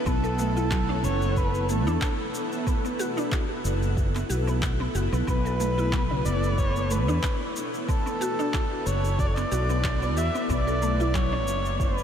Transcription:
Already playing: B3 E4 A4 B4
0.06 B1 B3 A4, kick, cabasa
0.24 A4, cabasa
0.39 A3, cabasa
0.57 E4, cabasa
0.71 F#3, kick, clap, cabasa
0.89 C#4
1.04 F#1 C#5, cabasa
1.22 cabasa
1.36 B4, kick, cabasa
1.54 cabasa
1.63 B4
1.69 A3 A4, cabasa
1.86 E2 D4, cabasa
2.01 kick, clap, cabasa
2.35 cabasa
2.52 cabasa
2.67 B3, kick, cabasa
2.85 B3, cabasa
2.99 F#4, cabasa
3.17 D4, cabasa
3.32 F#4, kick, clap, cabasa
3.64 F#1, cabasa
3.83 cabasa
3.97 kick, cabasa
4.15 B3, clap, cabasa
4.30 B1 F#4, cabasa
4.47 B3, cabasa
4.62 kick, clap, cabasa
4.80 B3
4.95 F#1 F#4, cabasa
5.12 B1 B3, cabasa
5.27 B1 B3 B4, kick, cabasa
5.45 A4, cabasa
5.60 A3, cabasa
5.78 E4, cabasa
5.93 F#3, kick, clap, cabasa
6.11 C#3
6.25 F#1 D5, cabasa
6.44 cabasa
6.58 C#5, kick, cabasa
6.76 cabasa
6.90 A3 B4, cabasa
7.08 E2 D4, cabasa
7.23 kick, clap, cabasa
7.56 cabasa
7.74 cabasa
7.88 B3 A4, kick, cabasa
8.06 B3, cabasa
8.21 F#4, cabasa
8.39 D4, cabasa
8.54 F#4, kick, clap, cabasa
8.86 F#1 C#5, cabasa
9.05 cabasa
9.19 D5, kick, cabasa
9.26 C#5
9.35 B3 D5, clap, cabasa
9.51 B1 F#4, cabasa
9.69 B3, cabasa
9.84 kick, clap, cabasa
10.02 B3, cabasa
10.16 E2 F#4 E5, cabasa
10.35 B3, cabasa
10.42 E5
10.49 B1 B3 D5, kick, cabasa
10.67 A4, cabasa
10.78 A3 A4, cabasa
11.00 E4, cabasa
11.14 F#3 C#5, kick, clap, cabasa
11.32 C#4 E4
11.47 F#1, cabasa
11.65 cabasa
11.80 B4, kick, cabasa
11.98 cabasa

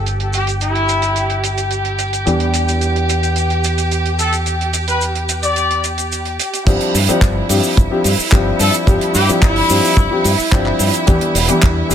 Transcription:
Already playing: G1 F3 G3 C4 D4 G4 G5
0.06 closed hi-hat, cabasa
0.20 closed hi-hat
0.33 G4, closed hi-hat, cabasa
0.47 closed hi-hat, cabasa
0.61 E4, closed hi-hat, cabasa
0.75 closed hi-hat
0.89 closed hi-hat, cabasa
1.02 closed hi-hat, cabasa
1.16 closed hi-hat, cabasa
1.30 closed hi-hat
1.44 closed hi-hat, cabasa
1.58 closed hi-hat, cabasa
1.71 closed hi-hat, cabasa
1.85 closed hi-hat
1.99 closed hi-hat, cabasa
2.13 closed hi-hat, cabasa
2.26 E2 E3 G3 B3 D4 G4, closed hi-hat, cabasa
2.40 closed hi-hat
2.54 closed hi-hat, cabasa
2.69 closed hi-hat, cabasa
2.81 closed hi-hat, cabasa
2.96 closed hi-hat
3.10 closed hi-hat, cabasa
3.23 closed hi-hat, cabasa
3.36 closed hi-hat, cabasa
3.50 closed hi-hat
3.64 closed hi-hat, cabasa
3.78 closed hi-hat, cabasa
3.91 closed hi-hat, cabasa
4.06 closed hi-hat
4.19 A4, closed hi-hat, cabasa
4.33 closed hi-hat, cabasa
4.46 closed hi-hat, cabasa
4.61 closed hi-hat
4.73 closed hi-hat, cabasa
4.88 B4, closed hi-hat, cabasa
5.01 closed hi-hat, cabasa
5.15 closed hi-hat
5.29 closed hi-hat, cabasa
5.43 D5, closed hi-hat, cabasa
5.56 closed hi-hat, cabasa
5.71 closed hi-hat
5.84 closed hi-hat, cabasa
5.98 closed hi-hat, cabasa
6.12 closed hi-hat, cabasa
6.25 closed hi-hat
6.40 closed hi-hat, cabasa
6.54 closed hi-hat, cabasa
6.66 G1 F3 G3 C4 D4 E4 G4 E5, kick, closed hi-hat, crash, cabasa
6.81 closed hi-hat
6.94 G2, open hi-hat, cabasa
7.08 F3 G3 C4 D4 G4, muted fingered electric bass stroke, closed hi-hat, cabasa
7.21 G1, kick, clap, closed hi-hat, cabasa
7.49 G2 F3 G3 C4 D4 G4, open hi-hat, cabasa
7.64 cabasa
7.77 G1, kick, closed hi-hat, cabasa
7.91 F3 G3 C4 D4 G4
8.04 G2, open hi-hat, cabasa
8.18 muted fingered electric bass stroke, cabasa
8.32 G1 F3 G3 C4 D4 G4, kick, clap, closed hi-hat, cabasa
8.59 G2 A4, open hi-hat, cabasa
8.74 closed hi-hat, cabasa
8.87 G1 F3 G3 C4 D4 G4, kick, closed hi-hat, cabasa
9.01 closed hi-hat
9.14 G2 G4, open hi-hat, cabasa
9.28 F3 G3 C4 D4 G4, muted fingered electric bass stroke, closed hi-hat, cabasa
9.42 G1 E4, kick, clap, closed hi-hat, cabasa
9.56 open hi-hat
9.69 G2 F3 G3 C4 D4 G4, open hi-hat, cabasa
9.85 cabasa
9.97 G1, kick, closed hi-hat, cabasa
10.10 F3 G3 C4 D4 G4
10.24 G2, open hi-hat, cabasa
10.39 muted fingered electric bass stroke, cabasa
10.52 G1 F3 G3 C4 D4 G4, kick, clap, closed hi-hat, cabasa
10.66 clap
10.79 G2, open hi-hat, cabasa
10.94 closed hi-hat, cabasa
11.07 E2 E3 G3 B3 D4 G4, kick, closed hi-hat, cabasa
11.21 closed hi-hat
11.35 E1, open hi-hat, cabasa
11.48 E3 G3 B3 D4 G4, muted fingered electric bass stroke, closed hi-hat, cabasa
11.62 E2, kick, clap, closed hi-hat, cabasa
11.89 E1 E3 G3 B3 D4 G4, open hi-hat, cabasa

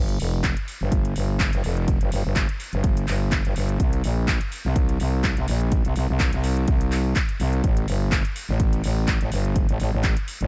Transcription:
Already playing: G1
0.09 closed hi-hat
0.20 F1, open hi-hat
0.44 kick, clap, closed hi-hat
0.57 closed hi-hat
0.68 open hi-hat
0.81 G1
0.92 kick, closed hi-hat
1.05 closed hi-hat
1.16 G1, open hi-hat
1.40 kick, clap, closed hi-hat
1.53 G1, closed hi-hat
1.64 F1, open hi-hat
1.77 closed hi-hat
1.88 kick, closed hi-hat
2.01 G1, closed hi-hat
2.12 G1, open hi-hat
2.25 G1
2.36 kick, clap, closed hi-hat
2.49 closed hi-hat
2.60 open hi-hat
2.73 G1, closed hi-hat
2.84 kick, closed hi-hat
2.97 closed hi-hat
3.08 G1, clap, open hi-hat
3.32 kick, clap, closed hi-hat
3.45 G1, closed hi-hat
3.56 G1, open hi-hat
3.69 closed hi-hat
3.80 kick, closed hi-hat
3.93 closed hi-hat
4.04 A#1, open hi-hat
4.28 kick, clap, closed hi-hat
4.41 closed hi-hat
4.52 open hi-hat
4.65 C2
4.76 kick, closed hi-hat
4.89 closed hi-hat
5.00 C2, open hi-hat
5.24 kick, clap, closed hi-hat
5.37 C2, closed hi-hat
5.48 A#1, open hi-hat
5.61 closed hi-hat
5.72 kick, closed hi-hat
5.85 C2, closed hi-hat
5.96 C2, open hi-hat
6.09 C2
6.20 kick, clap, closed hi-hat
6.33 C2, closed hi-hat
6.44 open hi-hat
6.57 closed hi-hat
6.68 kick, closed hi-hat
6.81 closed hi-hat
6.92 clap, open hi-hat
7.16 kick, clap, closed hi-hat
7.29 closed hi-hat
7.40 C2, open hi-hat
7.53 closed hi-hat
7.64 kick, closed hi-hat
7.77 closed hi-hat
7.88 G1, open hi-hat
8.12 kick, clap, closed hi-hat
8.25 closed hi-hat
8.36 open hi-hat
8.49 A1
8.60 kick, closed hi-hat
8.73 closed hi-hat
8.84 A1, open hi-hat
9.08 kick, clap, closed hi-hat
9.21 A1, closed hi-hat
9.32 G1, open hi-hat
9.45 closed hi-hat
9.56 kick, closed hi-hat
9.69 A1, closed hi-hat
9.80 A1, open hi-hat
9.93 A1
10.04 kick, clap, closed hi-hat
10.17 closed hi-hat
10.28 open hi-hat
10.41 A1, closed hi-hat

